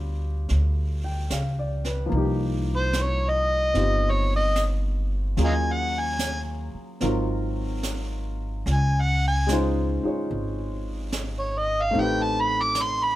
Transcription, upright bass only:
Already playing: D2
0.51 D2
1.30 C#2
2.12 C2
3.75 G1
5.38 D#2
6.74 muted upright bass stroke
7.01 G#1
8.66 C#2
10.04 muted upright bass stroke
10.31 G#1
11.95 A1

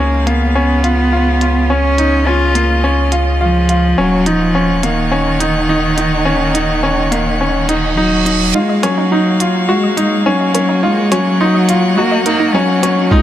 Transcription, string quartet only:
Already playing: C#4 F4 G#4 F5
1.69 D#5
3.98 A#3 D#4 C#5 F#5
8.56 A#3 F#4 C#5 F5
10.83 F#5
13.11 B2 A#4 D#5

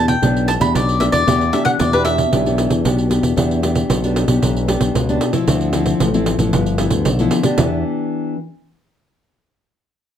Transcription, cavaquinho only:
0.08 G5
0.48 A5
0.61 B5
0.76 D5
1.00 E5
1.12 D5
1.53 E5
1.65 F#5
1.79 D5
1.93 B4
2.05 E5

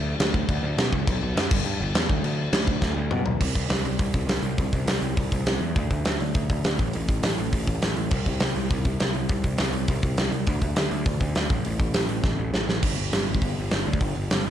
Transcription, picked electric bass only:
Already playing: D2
0.20 D2
0.49 D2
0.63 D2
0.77 B2
0.93 C#2
1.08 B1
1.22 B1
1.36 F#2
1.51 G1
1.65 G2
1.80 G1
1.95 E2
2.10 D2
2.24 D2
2.53 D2
2.82 D2
2.96 D2
3.11 B2
3.27 B1
3.41 C2
3.56 C2
3.70 C2
3.85 C2
4.00 C2
4.15 C2
4.27 C2
4.43 C2
4.59 C2
4.73 C2
4.87 C2
5.01 C2
5.17 C2
5.32 C2
5.46 C2
5.61 E2
5.76 D2
5.91 D2
6.06 D2
6.21 D2
6.35 D2
6.50 D2
6.66 D2
6.79 A1
6.95 A1
7.09 A1
7.23 A1
7.39 A1
7.53 A1
7.68 A1
7.82 A1
7.97 A1
8.12 C2
8.27 C2
8.41 C2
8.56 C2
8.71 C2
8.86 C2
9.00 C2
9.14 C2
9.30 C2
9.44 C2
9.59 C2
9.73 C2
9.89 C2
10.03 C2
10.19 C2
10.31 C2
10.48 D2
10.62 D2
10.77 D2
10.91 D2
11.07 D2
11.21 D2
11.36 D2
11.50 A1
11.66 A1
11.80 A1
11.94 A1
12.08 A1
12.24 A1
12.38 A1
12.53 A1
12.67 A1
12.83 G1
12.98 G1
13.13 G1
13.29 G1
13.42 G1
13.59 G1
13.72 G1
13.87 D2
14.01 G1
14.16 G1
14.32 G1
14.46 G1

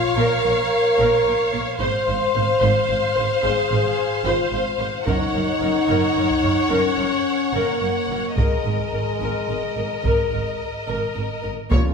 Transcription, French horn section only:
Already playing: F4
0.17 A#4
1.80 C5
3.44 G#4
4.25 F4
5.06 D#4
6.71 C#4
7.52 A#3
8.36 G#3
11.72 F4

